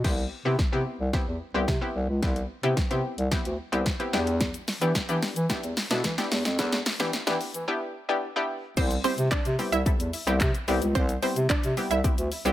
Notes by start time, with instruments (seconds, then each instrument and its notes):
0.04 bass clarinet C2, synth pluck B3 C4 E4 G4, kick, snare, crash
0.45 bass clarinet C3, synth pluck B3 C4 E4 G4
0.59 bass clarinet C3, kick, snare
0.72 bass clarinet C3, synth pluck B3 C4 E4 G4
1.00 bass clarinet C2
1.13 synth pluck B3 C4 E4 G4, kick, snare
1.27 bass clarinet E2
1.54 bass clarinet C2, synth pluck B3 C4 E4 G4
1.68 bass clarinet C3, kick, snare
1.81 synth pluck B3 C4 E4 G4
1.95 bass clarinet C2
2.09 bass clarinet C#2
2.22 bass clarinet C2, synth pluck B3 C4 E4 G4, kick, snare, closed hi-hat
2.36 closed hi-hat
2.63 bass clarinet C3, synth pluck B3 C4 E4 G4, closed hi-hat
2.77 bass clarinet C3, kick, snare, closed hi-hat
2.90 bass clarinet C3, synth pluck B3 C4 E4 G4, closed hi-hat
3.18 bass clarinet C2, closed hi-hat
3.31 synth pluck B3 C4 E4 G4, kick, snare, closed hi-hat
3.45 bass clarinet D2, closed hi-hat
3.72 bass clarinet C2, synth pluck B3 C4 E4 G4, closed hi-hat
3.86 kick, snare, closed hi-hat
4.00 synth pluck B3 C4 E4 G4, closed hi-hat
4.13 bass clarinet E2, synth pluck B3 D4 E4 G4, snare
4.27 closed hi-hat
4.41 kick, snare, closed hi-hat, shaker
4.54 closed hi-hat, shaker
4.68 snare, open hi-hat, shaker
4.81 bass clarinet E3, synth pluck B3 D4 E4 G4, closed hi-hat, shaker
4.95 bass clarinet E3, kick, snare, closed hi-hat, shaker
5.09 bass clarinet E3, synth pluck B3 D4 E4 G4, closed hi-hat, shaker
5.22 snare, open hi-hat, shaker
5.36 bass clarinet E3, closed hi-hat, shaker
5.50 synth pluck B3 D4 E4 G4, kick, snare, closed hi-hat, shaker
5.63 bass clarinet E2, closed hi-hat, shaker
5.77 snare, open hi-hat, shaker
5.91 bass clarinet B2, synth pluck B3 D4 E4 A4, snare, closed hi-hat, shaker
6.04 bass clarinet E3, kick, snare, closed hi-hat, shaker
6.18 synth pluck B3 D4 E4 G4, snare, closed hi-hat, shaker
6.31 bass clarinet E2, snare, open hi-hat, shaker
6.45 bass clarinet F2, snare, closed hi-hat, shaker
6.59 bass clarinet E2, synth pluck B3 D4 E4 A4, kick, snare, closed hi-hat, shaker
6.72 snare, closed hi-hat, shaker
6.86 snare, open hi-hat, shaker
7.00 bass clarinet E3, synth pluck B3 D4 E4 G4, snare, closed hi-hat, shaker
7.13 bass clarinet E3, snare, closed hi-hat, shaker
7.27 bass clarinet E3, synth pluck B3 D4 E4 G4, snare, closed hi-hat, shaker
7.41 open hi-hat, shaker
7.54 bass clarinet E3, closed hi-hat, shaker
7.68 synth pluck B3 D4 E4 G4
8.09 synth pluck B3 D4 E4 G4
8.36 synth pluck B3 D4 E4 G4
8.77 bass clarinet C2, synth pluck G3 B3 C4 E4 G4 C5, kick, closed hi-hat, crash, shaker
8.91 closed hi-hat, shaker
9.04 synth pluck G3 B3 C4 E4 G4 C5, open hi-hat, shaker
9.18 bass clarinet C3, closed hi-hat, shaker
9.31 bass clarinet C3, synth pluck D4 D5, kick, clap, closed hi-hat, shaker
9.45 bass clarinet C3, closed hi-hat, shaker
9.59 synth pluck G3 B3 C4 E4 G4, open hi-hat, shaker
9.72 bass clarinet C2, synth pluck E4 E5, closed hi-hat, shaker
9.86 synth pluck G3 B3 C4 E4 A4, kick, closed hi-hat, shaker
10.00 bass clarinet E2, closed hi-hat, shaker
10.13 open hi-hat, shaker
10.27 bass clarinet C2, synth pluck G3 B3 C4 E4 G4, closed hi-hat, shaker
10.41 bass clarinet C3, kick, clap, closed hi-hat, shaker
10.55 closed hi-hat, shaker
10.68 bass clarinet C2, synth pluck G3 B3 C4 E4 G4, open hi-hat, shaker
10.82 bass clarinet C#2, closed hi-hat, shaker
10.95 bass clarinet C2, synth pluck G3 B3 C4 E4 G4 C5, kick, closed hi-hat, shaker
11.09 closed hi-hat, shaker
11.22 synth pluck G3 B3 C4 E4 G4 C5, open hi-hat, shaker
11.36 bass clarinet C3, closed hi-hat, shaker
11.50 bass clarinet C3, synth pluck D4 D5, kick, clap, closed hi-hat, shaker
11.63 bass clarinet C3, closed hi-hat, shaker
11.77 synth pluck G3 B3 C4 E4 G4, open hi-hat, shaker
11.91 bass clarinet C2, synth pluck E4 E5, closed hi-hat, shaker
12.04 synth pluck G3 B3 C4 E4 G4, kick, closed hi-hat, shaker
12.18 bass clarinet D2, closed hi-hat, shaker
12.32 open hi-hat, shaker
12.45 bass clarinet C2, synth pluck G3 B3 C4 E4 G4, closed hi-hat, shaker